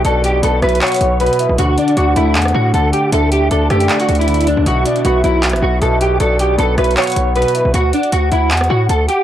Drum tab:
HH |x-----------x-----------x-----------x---x---x---x--xx-x-xx--x-----------x---x---x---x-----------|x-----------x-----x-----x-----------x-----------x---x---x---------------x-----------x-----------|x-----------x-----------x-----------x-----x-----x-----x-----x---x---x---x---x---x---x-----------|x-----------x-----x-----x-----------x-----------x---x---x---------------x-----------x-----------|
CP |------------------------------------------------x-----------------------------------------------|------------------------------------------------x-----------------------------------------------|------------------------------------------------x-----------------------------------------------|------------------------------------------------x-----------------------------------------------|
SD |------------------------------------r-----------------------------------------------------------|------------------------------------------------------r-----------------------------------------|------------------------------------r-----------------------------------------------------------|------------------------------------------------------r-----------------------------------------|

HH |x-----------x-----------x-----------x---x---x---x--xx-x-xx--x-----------x---x---x---x-----------|x-----------x-----x-----x-----------x-----------x---x---x---------------x-----------x-----------|
CP |------------------------------------------------x-----------------------------------------------|------------------------------------------------x-----------------------------------------------|
SD |------------------------------------r-----------------------------------------------------------|------------------------------------------------------r-----------------------------------------|